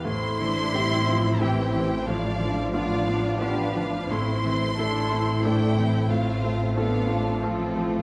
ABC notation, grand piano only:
X:1
M:3/4
L:1/8
Q:1/4=90
K:C
V:1 name="Grand piano"
A,, E, [CEG] C [CEG] E, | A,, F, [B,DF] B, [B,DF] F, | A,, E, [A,EA] A, [A,EA] E, | A,, A, [CFA] C [CFA] A, |]